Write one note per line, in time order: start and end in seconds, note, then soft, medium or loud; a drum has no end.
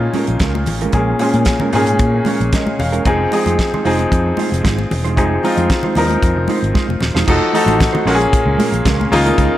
0.00 0.93 A#2 medium
0.00 0.93 A#3 medium
0.00 0.94 C#4 medium
0.00 3.07 D#4 medium
0.00 0.50 F4 loud
0.00 0.94 G#4 loud
0.00 muted clean electric guitar stroke medium
0.14 0.29 G#3 medium
0.14 0.29 C#4 medium
0.14 0.28 F4 medium
0.14 0.28 A#4 medium
0.14 open hi-hat soft
0.14 muted conga soft
0.14 high conga medium
0.27 0.37 A#1 medium
0.27 muted clean electric guitar stroke soft
0.27 closed hi-hat soft
0.40 0.66 C#2 medium
0.40 0.56 G#3 medium
0.40 0.56 C#4 medium
0.40 0.56 F4 medium
0.40 kick loud
0.40 snare loud
0.40 closed hi-hat medium
0.40 muted conga soft
0.44 0.55 A#4 medium
0.55 muted clean electric guitar stroke soft
0.55 high conga medium
0.66 0.86 A1 medium
0.66 muted clean electric guitar stroke soft
0.66 open hi-hat medium
0.66 muted conga soft
0.66 low conga medium
0.81 0.93 G#3 medium
0.81 0.93 C#4 medium
0.81 0.92 F4 medium
0.81 0.92 A#4 medium
0.81 closed hi-hat soft
0.92 1.12 A#1 loud
0.92 1.15 A#2 medium
0.92 1.09 G#3 medium
0.92 1.15 A#3 medium
0.92 1.15 C#4 medium
0.92 1.09 C#4 medium
0.92 1.10 F4 medium
0.92 1.16 G#4 medium
0.92 1.10 A#4 medium
0.92 kick loud
0.92 closed hi-hat soft
0.92 muted conga soft
1.19 1.63 A#2 medium
1.19 1.33 G#3 medium
1.19 1.63 A#3 medium
1.19 1.64 C#4 medium
1.19 1.33 C#4 medium
1.19 1.33 F4 medium
1.19 1.64 G#4 medium
1.19 1.34 C5 medium
1.19 open hi-hat medium
1.19 muted conga soft
1.34 1.43 A#2 medium
1.34 1.46 G#3 soft
1.34 1.46 C#4 soft
1.34 1.46 F4 medium
1.34 1.45 A#4 medium
1.34 closed hi-hat soft
1.34 high conga medium
1.45 muted clean electric guitar stroke soft
1.45 kick loud
1.45 snare loud
1.45 closed hi-hat medium
1.60 1.72 G#3 medium
1.60 1.72 C#4 medium
1.60 1.72 F4 medium
1.60 1.71 A#4 medium
1.60 low conga medium
1.73 2.00 G#2 medium
1.73 2.58 A#2 loud
1.73 1.88 G#3 medium
1.73 2.59 A#3 medium
1.73 1.88 C#4 medium
1.73 2.59 C#4 medium
1.73 1.87 F4 medium
1.73 2.60 G#4 loud
1.73 1.86 A#4 loud
1.73 open hi-hat medium
1.86 muted clean electric guitar stroke medium
1.86 closed hi-hat soft
1.86 high conga medium
1.99 2.19 A#2 medium
1.99 kick loud
1.99 closed hi-hat medium
1.99 muted conga soft
2.14 muted clean electric guitar stroke soft
2.25 2.41 G#3 medium
2.25 2.40 C#4 medium
2.25 2.40 F4 medium
2.25 2.39 A#4 medium
2.25 2.51 C#5 medium
2.25 open hi-hat medium
2.25 muted conga soft
2.25 high conga medium
2.40 2.49 A#1 medium
2.40 muted clean electric guitar stroke soft
2.40 closed hi-hat soft
2.53 2.68 G#3 medium
2.53 2.66 C#4 medium
2.53 2.66 F4 medium
2.53 2.65 A#4 loud
2.53 2.78 D#5 medium
2.53 kick loud
2.53 snare loud
2.53 closed hi-hat medium
2.66 muted clean electric guitar stroke soft
2.66 high conga medium
2.78 2.98 E1 medium
2.78 3.04 F5 medium
2.78 muted clean electric guitar stroke soft
2.78 open hi-hat medium
2.78 muted conga soft
2.78 low conga medium
2.92 3.04 G#3 soft
2.92 3.04 C#4 medium
2.92 3.04 F4 medium
2.92 3.03 A#4 medium
2.92 closed hi-hat soft
3.05 3.25 F1 loud
3.05 3.27 F3 medium
3.05 3.21 G#3 medium
3.05 3.28 C4 medium
3.05 3.21 D#4 medium
3.05 3.28 D#4 medium
3.05 3.21 F4 medium
3.05 3.28 G#4 loud
3.05 3.22 C5 medium
3.05 kick loud
3.05 closed hi-hat medium
3.31 3.75 F3 medium
3.31 3.44 G#3 medium
3.31 3.76 C4 medium
3.31 3.44 D#4 medium
3.31 3.76 D#4 medium
3.31 3.44 F4 medium
3.31 3.76 G#4 medium
3.31 3.44 D#5 medium
3.31 open hi-hat medium
3.31 muted conga soft
3.46 3.55 F2 medium
3.46 3.58 G#3 soft
3.46 3.57 D#4 medium
3.46 3.57 F4 medium
3.46 3.57 C5 medium
3.46 closed hi-hat soft
3.46 high conga medium
3.59 muted clean electric guitar stroke soft
3.59 kick loud
3.59 snare loud
3.59 closed hi-hat medium
3.74 3.84 G#3 medium
3.74 3.84 D#4 medium
3.74 3.84 F4 medium
3.74 3.84 C5 medium
3.74 low conga medium
3.85 4.04 F1 medium
3.85 4.70 F3 medium
3.85 4.00 G#3 medium
3.85 4.71 C4 medium
3.85 4.00 D#4 medium
3.85 4.71 D#4 medium
3.85 3.99 F4 medium
3.85 4.71 G#4 loud
3.85 3.98 C5 medium
3.85 open hi-hat medium
3.99 muted clean electric guitar stroke soft
3.99 closed hi-hat soft
3.99 high conga soft
4.12 4.31 F2 loud
4.12 kick loud
4.12 closed hi-hat medium
4.12 muted conga soft
4.27 muted clean electric guitar stroke soft
4.37 4.53 G#3 medium
4.37 4.52 D#4 loud
4.37 4.51 F4 medium
4.37 4.51 C5 medium
4.37 open hi-hat soft
4.37 high conga medium
4.52 4.61 F1 medium
4.52 muted clean electric guitar stroke soft
4.52 closed hi-hat soft
4.63 4.84 G#1 loud
4.63 4.79 G#3 medium
4.63 4.78 D#4 medium
4.63 4.78 F4 medium
4.63 4.77 C5 medium
4.63 kick loud
4.63 snare loud
4.63 closed hi-hat medium
4.78 muted clean electric guitar stroke soft
4.78 high conga medium
4.91 5.18 E1 medium
4.91 muted clean electric guitar stroke soft
4.91 open hi-hat medium
4.91 muted conga soft
4.91 low conga medium
5.04 5.15 G#3 medium
5.04 5.16 D#4 medium
5.04 5.16 F4 medium
5.04 5.15 C5 medium
5.04 closed hi-hat soft
5.16 5.37 F1 loud
5.16 5.38 F3 medium
5.16 5.32 G#3 medium
5.16 5.39 C4 medium
5.16 5.32 D#4 medium
5.16 5.39 D#4 medium
5.16 5.33 F4 medium
5.16 5.39 G#4 medium
5.16 5.33 C5 medium
5.16 kick medium
5.16 closed hi-hat medium
5.43 5.86 F3 medium
5.43 5.56 G#3 medium
5.43 5.87 C4 medium
5.43 5.87 D#4 medium
5.43 5.56 D#4 medium
5.43 5.87 F4 loud
5.43 5.56 F4 medium
5.43 5.57 D#5 medium
5.43 open hi-hat medium
5.57 5.67 F2 medium
5.57 5.69 G#3 medium
5.57 5.69 D#4 soft
5.57 5.68 F4 medium
5.57 5.68 C5 medium
5.57 closed hi-hat soft
5.57 high conga medium
5.70 muted clean electric guitar stroke soft
5.70 kick loud
5.70 snare loud
5.70 closed hi-hat medium
5.83 5.95 G#3 soft
5.83 5.95 D#4 medium
5.83 5.95 F4 medium
5.83 5.95 C5 medium
5.83 low conga medium
5.95 6.15 D#2 medium
5.95 6.81 F3 medium
5.95 6.17 G#3 medium
5.95 6.82 C4 medium
5.95 6.82 D#4 medium
5.95 6.11 D#4 medium
5.95 6.10 F4 medium
5.95 6.82 A#4 loud
5.95 6.09 C5 medium
5.95 open hi-hat medium
5.95 muted conga soft
6.10 muted clean electric guitar stroke soft
6.10 closed hi-hat soft
6.10 high conga soft
6.22 6.33 F2 medium
6.22 kick loud
6.22 closed hi-hat medium
6.22 muted conga soft
6.36 6.45 F1 medium
6.36 muted clean electric guitar stroke soft
6.48 6.64 G#3 medium
6.48 6.62 D#4 medium
6.48 6.62 F4 medium
6.48 6.61 C5 medium
6.48 open hi-hat soft
6.48 muted conga soft
6.48 high conga medium
6.62 6.72 G#1 medium
6.62 muted clean electric guitar stroke soft
6.62 closed hi-hat soft
6.74 6.90 G#3 medium
6.74 6.89 D#4 medium
6.74 6.88 F4 medium
6.74 6.87 C5 medium
6.74 kick loud
6.74 snare medium
6.74 muted conga soft
6.88 6.98 F1 medium
6.88 muted clean electric guitar stroke soft
6.88 high conga medium
7.00 7.11 D#1 medium
7.00 muted clean electric guitar stroke soft
7.00 snare medium
7.00 low conga medium
7.15 7.24 E1 medium
7.15 7.26 G#3 soft
7.15 7.26 D#4 medium
7.15 7.26 F4 soft
7.15 7.26 C5 medium
7.15 snare medium
7.27 7.38 F1 loud
7.27 7.50 F3 medium
7.27 7.42 A3 medium
7.27 7.43 D#4 medium
7.27 7.50 D#4 medium
7.27 7.43 F#4 medium
7.27 7.50 F#4 medium
7.27 7.50 A4 loud
7.27 7.43 C5 medium
7.27 kick loud
7.27 crash loud
7.53 8.07 F3 medium
7.53 7.66 A3 medium
7.53 7.66 D#4 medium
7.53 8.07 D#4 medium
7.53 7.66 F#4 medium
7.53 8.07 F#4 medium
7.53 8.07 A4 loud
7.53 7.66 D#5 medium
7.53 open hi-hat medium
7.66 7.86 A1 loud
7.66 7.78 A3 soft
7.66 7.78 D#4 medium
7.66 7.78 F#4 medium
7.66 7.78 C5 medium
7.66 closed hi-hat soft
7.66 high conga medium
7.79 muted clean electric guitar stroke soft
7.79 kick loud
7.79 snare loud
7.79 closed hi-hat medium
7.79 muted conga soft
7.93 8.05 A3 medium
7.93 8.05 D#4 medium
7.93 8.04 F#4 medium
7.93 8.04 C5 medium
7.93 low conga medium
8.05 8.25 A#1 loud
8.05 8.92 A#2 loud
8.05 8.21 G#3 medium
8.05 8.92 A#3 medium
8.05 8.20 C#4 medium
8.05 8.92 C#4 medium
8.05 8.19 F4 loud
8.05 8.14 F#4 medium
8.05 8.19 A#4 loud
8.05 open hi-hat medium
8.15 8.96 G#4 loud
8.20 muted clean electric guitar stroke soft
8.20 closed hi-hat soft
8.33 kick loud
8.33 closed hi-hat medium
8.33 muted conga soft
8.45 8.55 C#2 medium
8.45 muted clean electric guitar stroke soft
8.58 8.74 G#3 medium
8.58 8.73 C#4 medium
8.58 8.72 F4 medium
8.58 8.72 A#4 medium
8.58 open hi-hat medium
8.58 high conga medium
8.72 8.82 A#1 medium
8.72 muted clean electric guitar stroke medium
8.72 closed hi-hat medium
8.85 9.05 C#2 loud
8.85 9.00 G#3 medium
8.85 9.01 C#4 medium
8.85 9.00 F4 loud
8.85 8.99 A#4 medium
8.85 kick loud
8.85 snare loud
8.85 closed hi-hat medium
8.85 muted conga soft
9.00 muted clean electric guitar stroke soft
9.00 high conga medium
9.10 9.30 C#2 loud
9.10 9.55 C#3 loud
9.10 9.55 A#3 loud
9.10 9.55 D#4 medium
9.10 9.55 F4 loud
9.10 muted clean electric guitar stroke soft
9.10 open hi-hat medium
9.10 muted conga soft
9.10 low conga medium
9.26 9.37 A#3 medium
9.26 9.37 D#4 medium
9.26 9.37 F4 medium
9.26 9.37 A#4 medium
9.26 closed hi-hat soft
9.38 9.48 C#2 loud
9.38 9.53 A#3 medium
9.38 9.54 D#4 medium
9.38 9.54 F4 medium
9.38 9.54 A#4 loud
9.38 kick loud
9.38 closed hi-hat medium